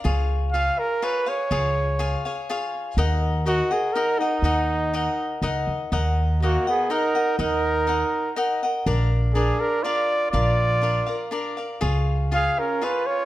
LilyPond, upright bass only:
\new Staff \with { instrumentName = "Upright bass" } { \clef bass \time 3/4 \key ees \minor \tempo 4 = 122 des,2 r4 | des,2 r4 | ees,2 r4 | ees,2 des,8 ees,8 |
ees,2 r4 | ees,2 r4 | bes,,2 r4 | bes,,2 r4 |
des,2 r4 | }